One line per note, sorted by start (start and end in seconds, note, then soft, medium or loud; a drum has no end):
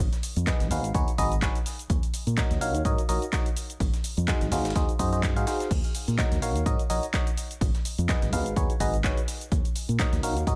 0.00 shaker soft
0.13 snare soft
0.13 closed hi-hat soft
0.13 shaker soft
0.23 closed hi-hat medium
0.23 open hi-hat loud
0.23 shaker medium
0.36 0.51 F2 loud
0.36 closed hi-hat soft
0.36 shaker soft
0.47 0.68 D#4 medium
0.47 0.68 F#4 medium
0.47 0.68 G#4 medium
0.47 0.68 B4 medium
0.47 0.68 D#5 medium
0.47 kick loud
0.47 snare loud
0.47 clap loud
0.47 closed hi-hat medium
0.47 shaker soft
0.60 0.71 G#1 loud
0.60 snare medium
0.60 closed hi-hat soft
0.60 shaker soft
0.71 0.84 D#2 medium
0.71 0.92 D#4 medium
0.71 0.92 F#4 medium
0.71 0.92 G#4 medium
0.71 0.92 B4 medium
0.71 0.92 F5 medium
0.71 closed hi-hat medium
0.71 open hi-hat loud
0.71 shaker medium
0.84 0.91 G#1 medium
0.84 closed hi-hat soft
0.84 shaker soft
0.94 1.03 D#2 medium
0.94 1.11 D#4 medium
0.94 1.11 F#4 medium
0.94 1.11 G#4 medium
0.94 1.11 B4 medium
0.94 1.11 C#5 loud
0.94 kick loud
0.94 closed hi-hat medium
0.94 shaker soft
1.08 closed hi-hat soft
1.08 shaker soft
1.18 1.48 G#1 medium
1.18 1.35 D#4 medium
1.18 1.35 F#4 medium
1.18 1.35 G#4 medium
1.18 1.35 B4 medium
1.18 1.35 D#5 loud
1.18 kick medium
1.18 closed hi-hat medium
1.18 open hi-hat loud
1.18 shaker medium
1.32 closed hi-hat soft
1.32 shaker soft
1.42 1.58 D#4 medium
1.42 1.58 F#4 medium
1.42 1.58 G#4 medium
1.42 1.58 B4 medium
1.42 1.58 C#5 medium
1.42 kick loud
1.42 snare loud
1.42 clap loud
1.42 closed hi-hat medium
1.42 shaker soft
1.55 closed hi-hat soft
1.55 shaker soft
1.66 snare soft
1.66 closed hi-hat medium
1.66 open hi-hat loud
1.66 shaker medium
1.79 closed hi-hat soft
1.79 shaker soft
1.90 1.98 D#2 loud
1.90 kick loud
1.90 closed hi-hat medium
1.90 shaker soft
2.03 closed hi-hat soft
2.03 shaker soft
2.14 closed hi-hat medium
2.14 open hi-hat loud
2.14 shaker medium
2.27 2.41 A#2 loud
2.27 closed hi-hat soft
2.27 shaker soft
2.37 2.58 D#4 medium
2.37 2.58 F#4 medium
2.37 2.58 A#4 medium
2.37 2.58 C#5 medium
2.37 2.58 D#5 medium
2.37 kick loud
2.37 snare loud
2.37 clap loud
2.37 closed hi-hat medium
2.37 shaker soft
2.51 2.61 D#2 loud
2.51 snare medium
2.51 closed hi-hat soft
2.51 shaker soft
2.61 2.74 A#1 medium
2.61 2.82 D#4 medium
2.61 2.82 F#4 medium
2.61 2.82 A#4 medium
2.61 2.82 C#5 medium
2.61 2.82 F5 medium
2.61 closed hi-hat medium
2.61 open hi-hat loud
2.61 shaker medium
2.74 2.81 D#2 medium
2.74 closed hi-hat soft
2.74 shaker soft
2.85 2.94 G#2 loud
2.85 3.01 D#4 medium
2.85 3.01 F#4 medium
2.85 3.01 A#4 medium
2.85 3.01 C#5 medium
2.85 3.01 D#5 loud
2.85 kick loud
2.85 closed hi-hat medium
2.85 shaker soft
2.98 closed hi-hat soft
2.98 shaker soft
3.09 3.17 A#1 medium
3.09 3.25 D#4 medium
3.09 3.25 F#4 medium
3.09 3.25 A#4 medium
3.09 3.25 C#5 medium
3.09 3.25 D#5 medium
3.09 closed hi-hat medium
3.09 open hi-hat loud
3.09 shaker medium
3.22 closed hi-hat soft
3.22 shaker soft
3.33 3.49 D#4 medium
3.33 3.49 F#4 medium
3.33 3.49 A#4 medium
3.33 3.49 C#5 medium
3.33 3.49 D#5 medium
3.33 kick loud
3.33 snare loud
3.33 clap loud
3.33 closed hi-hat medium
3.33 shaker soft
3.46 closed hi-hat soft
3.46 shaker soft
3.56 closed hi-hat medium
3.56 open hi-hat loud
3.56 shaker medium
3.70 closed hi-hat soft
3.70 shaker soft
3.80 3.89 G#1 loud
3.80 kick loud
3.80 closed hi-hat medium
3.80 open hi-hat medium
3.80 shaker soft
3.94 snare soft
3.94 closed hi-hat soft
3.94 shaker soft
4.04 closed hi-hat medium
4.04 open hi-hat loud
4.04 shaker medium
4.17 4.32 F2 loud
4.17 closed hi-hat soft
4.17 shaker soft
4.28 4.49 D#4 medium
4.28 4.49 F#4 medium
4.28 4.49 G#4 medium
4.28 4.49 C5 medium
4.28 4.49 D#5 medium
4.28 kick loud
4.28 snare loud
4.28 clap loud
4.28 closed hi-hat medium
4.28 shaker soft
4.41 4.52 G#1 loud
4.41 snare medium
4.41 closed hi-hat soft
4.41 shaker soft
4.52 4.65 D#2 medium
4.52 4.73 D#4 medium
4.52 4.73 F#4 medium
4.52 4.73 G#4 medium
4.52 4.73 C5 medium
4.52 4.73 F5 medium
4.52 snare loud
4.52 closed hi-hat medium
4.52 open hi-hat loud
4.52 shaker medium
4.65 4.72 G#1 medium
4.65 snare medium
4.65 closed hi-hat soft
4.65 closed hi-hat medium
4.65 shaker soft
4.70 snare medium
4.70 closed hi-hat medium
4.75 4.84 D#2 medium
4.75 4.92 D#4 medium
4.75 4.92 F#4 medium
4.75 4.92 G#4 medium
4.75 4.92 C5 medium
4.75 4.92 D#5 loud
4.75 kick loud
4.75 snare loud
4.75 closed hi-hat medium
4.75 shaker soft
4.89 closed hi-hat soft
4.89 shaker soft
4.99 5.37 F#2 medium
4.99 5.11 D#4 medium
4.99 5.11 F#4 medium
4.99 5.11 G#4 medium
4.99 5.11 C5 medium
4.99 5.11 D#5 loud
4.99 kick medium
4.99 closed hi-hat medium
4.99 open hi-hat loud
4.99 shaker medium
5.12 5.33 D#4 medium
5.12 5.33 F#4 medium
5.12 5.33 G#4 medium
5.12 5.33 C5 medium
5.12 5.33 D#5 medium
5.12 closed hi-hat soft
5.12 shaker soft
5.23 kick loud
5.23 snare loud
5.23 clap loud
5.23 closed hi-hat medium
5.23 shaker soft
5.36 5.43 G#2 medium
5.36 5.45 D#4 medium
5.36 5.45 F#4 medium
5.36 5.45 G#4 medium
5.36 5.45 C5 medium
5.36 5.45 F5 loud
5.36 closed hi-hat soft
5.36 shaker soft
5.47 5.70 D#4 medium
5.47 5.69 F#4 medium
5.47 5.70 G#4 medium
5.47 5.70 C5 medium
5.47 5.69 F5 medium
5.47 snare loud
5.47 closed hi-hat medium
5.47 open hi-hat loud
5.47 shaker medium
5.60 snare soft
5.60 closed hi-hat soft
5.60 shaker soft
5.71 5.79 D#2 medium
5.71 kick loud
5.71 closed hi-hat medium
5.71 crash medium
5.71 shaker soft
5.84 closed hi-hat soft
5.84 shaker soft
5.95 closed hi-hat medium
5.95 open hi-hat loud
5.95 shaker medium
6.08 6.22 A#2 loud
6.08 closed hi-hat soft
6.08 shaker soft
6.18 6.39 D#4 medium
6.18 6.39 F#4 medium
6.18 6.39 A#4 medium
6.18 6.39 C#5 medium
6.18 6.39 D#5 medium
6.18 kick loud
6.18 snare loud
6.18 clap loud
6.18 closed hi-hat medium
6.18 shaker soft
6.32 6.42 D#2 loud
6.32 snare medium
6.32 closed hi-hat soft
6.32 shaker soft
6.42 6.55 A#1 medium
6.42 6.63 D#4 medium
6.42 6.64 F#4 medium
6.42 6.64 A#4 medium
6.42 6.63 C#5 medium
6.42 6.64 F5 medium
6.42 closed hi-hat medium
6.42 open hi-hat loud
6.42 shaker medium
6.55 6.62 D#2 medium
6.55 closed hi-hat soft
6.55 shaker soft
6.66 6.75 G#2 loud
6.66 6.82 D#4 medium
6.66 6.82 F#4 medium
6.66 6.82 A#4 medium
6.66 6.82 C#5 medium
6.66 6.82 D#5 loud
6.66 kick loud
6.66 closed hi-hat medium
6.66 shaker soft
6.79 closed hi-hat soft
6.79 shaker soft
6.90 6.98 A#1 medium
6.90 7.06 D#4 medium
6.90 7.06 F#4 medium
6.90 7.06 A#4 medium
6.90 7.06 C#5 medium
6.90 7.06 D#5 loud
6.90 closed hi-hat medium
6.90 open hi-hat loud
6.90 shaker medium
7.03 closed hi-hat soft
7.03 shaker soft
7.14 7.30 D#4 medium
7.14 7.30 F#4 medium
7.14 7.30 A#4 medium
7.14 7.30 C#5 medium
7.14 7.30 D#5 medium
7.14 kick loud
7.14 snare loud
7.14 clap loud
7.14 closed hi-hat medium
7.14 shaker soft
7.27 closed hi-hat soft
7.27 shaker soft
7.37 closed hi-hat medium
7.37 open hi-hat loud
7.37 shaker medium
7.51 closed hi-hat soft
7.51 shaker soft
7.61 7.70 G#1 loud
7.61 kick loud
7.61 closed hi-hat medium
7.61 open hi-hat medium
7.61 shaker soft
7.75 snare soft
7.75 closed hi-hat soft
7.75 shaker soft
7.85 closed hi-hat medium
7.85 open hi-hat loud
7.85 shaker medium
7.98 8.13 F2 loud
7.98 closed hi-hat soft
7.98 shaker soft
8.09 8.30 D#4 medium
8.09 8.30 F#4 medium
8.09 8.30 G#4 medium
8.09 8.30 B4 medium
8.09 8.30 D#5 medium
8.09 kick loud
8.09 snare loud
8.09 clap loud
8.09 closed hi-hat medium
8.09 shaker soft
8.22 8.33 G#1 loud
8.22 snare medium
8.22 closed hi-hat soft
8.22 shaker soft
8.33 8.46 D#2 medium
8.33 8.54 D#4 medium
8.33 8.54 F#4 medium
8.33 8.54 G#4 medium
8.33 8.54 B4 medium
8.33 8.54 F5 medium
8.33 closed hi-hat medium
8.33 open hi-hat loud
8.33 shaker medium
8.46 8.53 G#1 medium
8.46 closed hi-hat soft
8.46 shaker soft
8.56 8.65 D#2 medium
8.56 8.73 D#4 medium
8.56 8.73 F#4 medium
8.56 8.73 G#4 medium
8.56 8.73 B4 medium
8.56 8.73 C#5 loud
8.56 kick loud
8.56 closed hi-hat medium
8.56 shaker soft
8.70 closed hi-hat soft
8.70 shaker soft
8.80 9.10 G#1 medium
8.80 8.97 D#4 medium
8.80 8.96 F#4 medium
8.80 8.97 G#4 medium
8.80 8.97 B4 medium
8.80 8.97 D#5 loud
8.80 kick medium
8.80 closed hi-hat medium
8.80 open hi-hat loud
8.80 shaker medium
8.94 closed hi-hat soft
8.94 shaker soft
9.04 9.20 D#4 medium
9.04 9.20 F#4 medium
9.04 9.20 G#4 medium
9.04 9.20 B4 medium
9.04 9.20 C#5 medium
9.04 kick loud
9.04 snare loud
9.04 clap loud
9.04 closed hi-hat medium
9.04 shaker soft
9.17 closed hi-hat soft
9.17 shaker soft
9.28 snare soft
9.28 closed hi-hat medium
9.28 open hi-hat loud
9.28 shaker medium
9.41 closed hi-hat soft
9.41 shaker soft
9.52 9.60 D#2 loud
9.52 kick loud
9.52 closed hi-hat medium
9.52 shaker soft
9.65 closed hi-hat soft
9.65 shaker soft
9.75 closed hi-hat medium
9.75 open hi-hat loud
9.75 shaker medium
9.89 10.03 A#2 loud
9.89 closed hi-hat soft
9.89 shaker soft
9.99 10.20 D#4 medium
9.99 10.20 F#4 medium
9.99 10.20 A#4 medium
9.99 10.20 C#5 medium
9.99 10.20 D#5 medium
9.99 kick loud
9.99 snare loud
9.99 clap loud
9.99 closed hi-hat medium
9.99 shaker soft
10.13 10.23 D#2 loud
10.13 snare medium
10.13 closed hi-hat soft
10.13 shaker soft
10.23 10.36 A#1 medium
10.23 10.44 D#4 medium
10.23 10.44 F#4 medium
10.23 10.44 A#4 medium
10.23 10.45 C#5 medium
10.23 10.44 F5 medium
10.23 closed hi-hat medium
10.23 open hi-hat loud
10.23 shaker medium
10.36 10.43 D#2 medium
10.36 closed hi-hat soft
10.36 shaker soft
10.47 10.55 G#2 loud
10.47 10.55 D#4 medium
10.47 10.55 F#4 medium
10.47 10.55 A#4 medium
10.47 10.55 C#5 medium
10.47 10.55 D#5 loud
10.47 kick loud
10.47 closed hi-hat medium
10.47 shaker soft